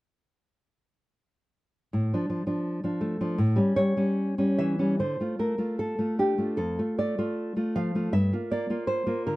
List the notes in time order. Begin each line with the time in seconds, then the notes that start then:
1.93 A2
2.14 F3 D4
2.30 F3
2.47 F3 D4
2.84 F3 D4
3.01 A3
3.21 F3 D4
3.38 A2
3.56 G3 C#4
3.76 G3 C#5
3.97 G3 C#4
4.38 G3 C#4
4.58 E3 E5
4.79 G3 C#4
5.00 D3 C5
5.20 A3 F4
5.39 A3 A#4
5.58 A3 F4
5.79 A4
5.99 A3 F4
6.19 D4 G4
6.38 A3 F4
6.57 F2 A4
6.79 A3 F4
6.98 A3 D5
7.18 A3 F4
7.56 A3 F4
7.76 F3 F5
7.95 A3 F4
8.13 G2 E5
8.33 A#3 F4
8.51 A#3 D5
8.70 A#3 F4
8.87 C5
9.07 A#3 F4
9.27 D3 A#4